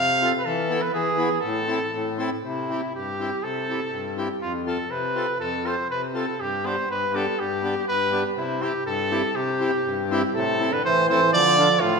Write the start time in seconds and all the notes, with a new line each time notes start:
Already playing: C3 F5
0.21 C4 F4 A4
0.38 B4
0.45 E3 A4
0.69 B3 E4 A4
0.81 B4
0.93 E3 G#4
1.17 B3 E4 G#4
1.41 A2 A4
1.67 C4 E4 A4
1.93 A2
2.18 C4 E4 A4
2.44 C3 E4
2.69 C4 E4 G4
2.94 G2 G4
3.19 C4 E4 G4
3.43 C3 A4
3.69 C4 E4 G4
3.92 G2
4.17 C4 E4 G4
4.41 F2 F4
4.66 C4 F4 A4
4.89 C3 B4
5.15 C4 F4 A4
5.39 F2 A4
5.64 C4 F4 A4 C5
5.89 C3 B4
6.14 C4 F4 A4
6.40 G2 G4
6.64 B3 D4 G4 C5
6.90 G2 B4
7.14 B3 D4 G4 A4
7.39 G2 G4
7.62 B3 D4 G4
7.87 G2 B4
8.11 B3 D4 G4
8.36 C3 E4
8.61 C4 E4 G4
8.85 G2 A4
9.10 C4 E4 G4
9.34 C3 G4
9.59 C4 E4 G4
9.85 G2
10.11 C4 E4 G4
10.35 A2 C3 A4
10.60 C4 E4 A4
10.72 D3 B4
10.84 A2 E3 C5
11.09 E3 C4 E4 A4 C5
11.33 D3 F3 D5
11.58 D4 F4 A4
11.80 A2 F4